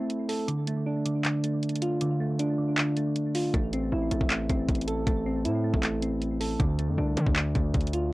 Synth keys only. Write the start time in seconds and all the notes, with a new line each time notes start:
Already playing: A3 C4 E4
0.29 A4
0.48 D3
0.68 A3
0.86 D4
1.05 D3
1.25 D3
1.44 A3
1.82 F4
2.01 D3
2.20 A3
2.39 D4
2.58 D3
2.78 D3
2.97 A3
3.35 F4
3.54 A3
3.73 C4
3.92 E4
4.11 A3
4.30 A3
4.50 C4
4.88 A4
5.07 A3
5.26 C4
5.45 E4
5.64 A3
5.83 A3
6.02 C4
6.40 A4
6.59 D3
6.79 A3
6.98 D4
7.17 D3
7.36 D3
7.55 A3
7.94 F4